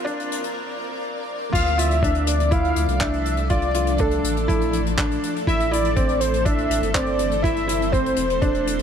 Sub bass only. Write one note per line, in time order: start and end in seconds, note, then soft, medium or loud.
0.00 0.26 F1 medium
0.30 0.55 F1 medium
1.54 2.72 D2 loud
2.76 2.86 D2 loud
2.89 4.20 C2 medium
4.24 5.18 A1 medium
5.47 6.66 A1 loud
6.70 6.80 A1 loud
6.82 8.13 G1 medium
8.18 8.82 E1 medium